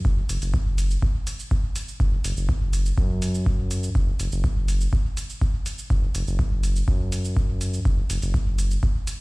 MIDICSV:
0, 0, Header, 1, 3, 480
1, 0, Start_track
1, 0, Tempo, 487805
1, 48, Time_signature, 4, 2, 24, 8
1, 9060, End_track
2, 0, Start_track
2, 0, Title_t, "Analog synth bass"
2, 0, Program_c, 0, 38
2, 49, Note_on_c, 0, 30, 100
2, 223, Note_off_c, 0, 30, 0
2, 289, Note_on_c, 0, 30, 86
2, 378, Note_off_c, 0, 30, 0
2, 412, Note_on_c, 0, 30, 99
2, 956, Note_off_c, 0, 30, 0
2, 1968, Note_on_c, 0, 30, 104
2, 2143, Note_off_c, 0, 30, 0
2, 2208, Note_on_c, 0, 30, 84
2, 2297, Note_off_c, 0, 30, 0
2, 2331, Note_on_c, 0, 30, 95
2, 2876, Note_off_c, 0, 30, 0
2, 2928, Note_on_c, 0, 42, 96
2, 3836, Note_off_c, 0, 42, 0
2, 3888, Note_on_c, 0, 30, 101
2, 4063, Note_off_c, 0, 30, 0
2, 4129, Note_on_c, 0, 30, 82
2, 4218, Note_off_c, 0, 30, 0
2, 4253, Note_on_c, 0, 30, 102
2, 4797, Note_off_c, 0, 30, 0
2, 5808, Note_on_c, 0, 30, 103
2, 5983, Note_off_c, 0, 30, 0
2, 6049, Note_on_c, 0, 30, 88
2, 6138, Note_off_c, 0, 30, 0
2, 6172, Note_on_c, 0, 30, 97
2, 6716, Note_off_c, 0, 30, 0
2, 6768, Note_on_c, 0, 42, 93
2, 7676, Note_off_c, 0, 42, 0
2, 7728, Note_on_c, 0, 30, 97
2, 7903, Note_off_c, 0, 30, 0
2, 7969, Note_on_c, 0, 30, 87
2, 8057, Note_off_c, 0, 30, 0
2, 8092, Note_on_c, 0, 30, 99
2, 8636, Note_off_c, 0, 30, 0
2, 9060, End_track
3, 0, Start_track
3, 0, Title_t, "Drums"
3, 48, Note_on_c, 9, 36, 123
3, 49, Note_on_c, 9, 82, 29
3, 147, Note_off_c, 9, 36, 0
3, 147, Note_off_c, 9, 82, 0
3, 289, Note_on_c, 9, 46, 85
3, 289, Note_on_c, 9, 82, 68
3, 387, Note_off_c, 9, 46, 0
3, 387, Note_off_c, 9, 82, 0
3, 412, Note_on_c, 9, 46, 35
3, 412, Note_on_c, 9, 82, 38
3, 511, Note_off_c, 9, 46, 0
3, 511, Note_off_c, 9, 82, 0
3, 528, Note_on_c, 9, 36, 125
3, 529, Note_on_c, 9, 82, 29
3, 627, Note_off_c, 9, 36, 0
3, 627, Note_off_c, 9, 82, 0
3, 769, Note_on_c, 9, 46, 69
3, 769, Note_on_c, 9, 82, 68
3, 867, Note_off_c, 9, 46, 0
3, 867, Note_off_c, 9, 82, 0
3, 892, Note_on_c, 9, 82, 39
3, 991, Note_off_c, 9, 82, 0
3, 1008, Note_on_c, 9, 36, 122
3, 1009, Note_on_c, 9, 82, 29
3, 1107, Note_off_c, 9, 36, 0
3, 1107, Note_off_c, 9, 82, 0
3, 1248, Note_on_c, 9, 46, 79
3, 1248, Note_on_c, 9, 82, 66
3, 1347, Note_off_c, 9, 46, 0
3, 1347, Note_off_c, 9, 82, 0
3, 1372, Note_on_c, 9, 82, 36
3, 1471, Note_off_c, 9, 82, 0
3, 1488, Note_on_c, 9, 36, 118
3, 1488, Note_on_c, 9, 82, 28
3, 1587, Note_off_c, 9, 36, 0
3, 1587, Note_off_c, 9, 82, 0
3, 1728, Note_on_c, 9, 46, 73
3, 1728, Note_on_c, 9, 82, 68
3, 1827, Note_off_c, 9, 46, 0
3, 1827, Note_off_c, 9, 82, 0
3, 1852, Note_on_c, 9, 82, 40
3, 1950, Note_off_c, 9, 82, 0
3, 1968, Note_on_c, 9, 36, 117
3, 1969, Note_on_c, 9, 82, 27
3, 2066, Note_off_c, 9, 36, 0
3, 2067, Note_off_c, 9, 82, 0
3, 2209, Note_on_c, 9, 46, 83
3, 2209, Note_on_c, 9, 82, 65
3, 2307, Note_off_c, 9, 46, 0
3, 2307, Note_off_c, 9, 82, 0
3, 2332, Note_on_c, 9, 82, 37
3, 2431, Note_off_c, 9, 82, 0
3, 2448, Note_on_c, 9, 36, 113
3, 2449, Note_on_c, 9, 82, 26
3, 2547, Note_off_c, 9, 36, 0
3, 2547, Note_off_c, 9, 82, 0
3, 2689, Note_on_c, 9, 46, 69
3, 2689, Note_on_c, 9, 82, 66
3, 2787, Note_off_c, 9, 46, 0
3, 2787, Note_off_c, 9, 82, 0
3, 2812, Note_on_c, 9, 82, 39
3, 2911, Note_off_c, 9, 82, 0
3, 2928, Note_on_c, 9, 36, 119
3, 2929, Note_on_c, 9, 82, 27
3, 3027, Note_off_c, 9, 36, 0
3, 3027, Note_off_c, 9, 82, 0
3, 3169, Note_on_c, 9, 46, 80
3, 3169, Note_on_c, 9, 82, 65
3, 3267, Note_off_c, 9, 46, 0
3, 3267, Note_off_c, 9, 82, 0
3, 3292, Note_on_c, 9, 82, 37
3, 3391, Note_off_c, 9, 82, 0
3, 3408, Note_on_c, 9, 36, 121
3, 3409, Note_on_c, 9, 82, 27
3, 3507, Note_off_c, 9, 36, 0
3, 3507, Note_off_c, 9, 82, 0
3, 3649, Note_on_c, 9, 46, 71
3, 3649, Note_on_c, 9, 82, 64
3, 3747, Note_off_c, 9, 46, 0
3, 3747, Note_off_c, 9, 82, 0
3, 3772, Note_on_c, 9, 82, 38
3, 3871, Note_off_c, 9, 82, 0
3, 3888, Note_on_c, 9, 36, 118
3, 3889, Note_on_c, 9, 82, 28
3, 3987, Note_off_c, 9, 36, 0
3, 3987, Note_off_c, 9, 82, 0
3, 4129, Note_on_c, 9, 46, 77
3, 4129, Note_on_c, 9, 82, 66
3, 4227, Note_off_c, 9, 46, 0
3, 4227, Note_off_c, 9, 82, 0
3, 4252, Note_on_c, 9, 82, 39
3, 4351, Note_off_c, 9, 82, 0
3, 4369, Note_on_c, 9, 36, 108
3, 4369, Note_on_c, 9, 82, 27
3, 4467, Note_off_c, 9, 36, 0
3, 4467, Note_off_c, 9, 82, 0
3, 4609, Note_on_c, 9, 46, 67
3, 4609, Note_on_c, 9, 82, 66
3, 4707, Note_off_c, 9, 46, 0
3, 4707, Note_off_c, 9, 82, 0
3, 4733, Note_on_c, 9, 82, 38
3, 4831, Note_off_c, 9, 82, 0
3, 4849, Note_on_c, 9, 36, 118
3, 4849, Note_on_c, 9, 82, 29
3, 4947, Note_off_c, 9, 36, 0
3, 4947, Note_off_c, 9, 82, 0
3, 5089, Note_on_c, 9, 46, 77
3, 5089, Note_on_c, 9, 82, 64
3, 5187, Note_off_c, 9, 46, 0
3, 5187, Note_off_c, 9, 82, 0
3, 5212, Note_on_c, 9, 82, 37
3, 5311, Note_off_c, 9, 82, 0
3, 5328, Note_on_c, 9, 36, 115
3, 5329, Note_on_c, 9, 82, 26
3, 5427, Note_off_c, 9, 36, 0
3, 5428, Note_off_c, 9, 82, 0
3, 5569, Note_on_c, 9, 46, 70
3, 5569, Note_on_c, 9, 82, 64
3, 5667, Note_off_c, 9, 46, 0
3, 5667, Note_off_c, 9, 82, 0
3, 5692, Note_on_c, 9, 82, 37
3, 5791, Note_off_c, 9, 82, 0
3, 5808, Note_on_c, 9, 36, 113
3, 5809, Note_on_c, 9, 82, 29
3, 5907, Note_off_c, 9, 36, 0
3, 5907, Note_off_c, 9, 82, 0
3, 6049, Note_on_c, 9, 46, 79
3, 6049, Note_on_c, 9, 82, 68
3, 6147, Note_off_c, 9, 46, 0
3, 6147, Note_off_c, 9, 82, 0
3, 6172, Note_on_c, 9, 82, 38
3, 6271, Note_off_c, 9, 82, 0
3, 6288, Note_on_c, 9, 36, 112
3, 6289, Note_on_c, 9, 82, 28
3, 6386, Note_off_c, 9, 36, 0
3, 6387, Note_off_c, 9, 82, 0
3, 6529, Note_on_c, 9, 46, 65
3, 6529, Note_on_c, 9, 82, 65
3, 6627, Note_off_c, 9, 46, 0
3, 6627, Note_off_c, 9, 82, 0
3, 6652, Note_on_c, 9, 82, 40
3, 6750, Note_off_c, 9, 82, 0
3, 6768, Note_on_c, 9, 36, 113
3, 6769, Note_on_c, 9, 82, 28
3, 6866, Note_off_c, 9, 36, 0
3, 6867, Note_off_c, 9, 82, 0
3, 7009, Note_on_c, 9, 46, 75
3, 7009, Note_on_c, 9, 82, 65
3, 7107, Note_off_c, 9, 46, 0
3, 7107, Note_off_c, 9, 82, 0
3, 7132, Note_on_c, 9, 82, 38
3, 7230, Note_off_c, 9, 82, 0
3, 7248, Note_on_c, 9, 36, 110
3, 7248, Note_on_c, 9, 82, 29
3, 7346, Note_off_c, 9, 36, 0
3, 7347, Note_off_c, 9, 82, 0
3, 7488, Note_on_c, 9, 46, 64
3, 7488, Note_on_c, 9, 82, 65
3, 7587, Note_off_c, 9, 46, 0
3, 7587, Note_off_c, 9, 82, 0
3, 7612, Note_on_c, 9, 82, 39
3, 7710, Note_off_c, 9, 82, 0
3, 7728, Note_on_c, 9, 36, 117
3, 7729, Note_on_c, 9, 82, 30
3, 7826, Note_off_c, 9, 36, 0
3, 7827, Note_off_c, 9, 82, 0
3, 7968, Note_on_c, 9, 46, 80
3, 7968, Note_on_c, 9, 82, 69
3, 8067, Note_off_c, 9, 46, 0
3, 8067, Note_off_c, 9, 82, 0
3, 8092, Note_on_c, 9, 46, 32
3, 8092, Note_on_c, 9, 82, 39
3, 8190, Note_off_c, 9, 46, 0
3, 8190, Note_off_c, 9, 82, 0
3, 8208, Note_on_c, 9, 36, 109
3, 8208, Note_on_c, 9, 82, 30
3, 8306, Note_off_c, 9, 36, 0
3, 8306, Note_off_c, 9, 82, 0
3, 8448, Note_on_c, 9, 46, 69
3, 8448, Note_on_c, 9, 82, 68
3, 8546, Note_off_c, 9, 46, 0
3, 8546, Note_off_c, 9, 82, 0
3, 8571, Note_on_c, 9, 82, 40
3, 8670, Note_off_c, 9, 82, 0
3, 8688, Note_on_c, 9, 36, 120
3, 8688, Note_on_c, 9, 82, 30
3, 8786, Note_off_c, 9, 36, 0
3, 8787, Note_off_c, 9, 82, 0
3, 8928, Note_on_c, 9, 46, 79
3, 8928, Note_on_c, 9, 82, 71
3, 9027, Note_off_c, 9, 46, 0
3, 9027, Note_off_c, 9, 82, 0
3, 9060, End_track
0, 0, End_of_file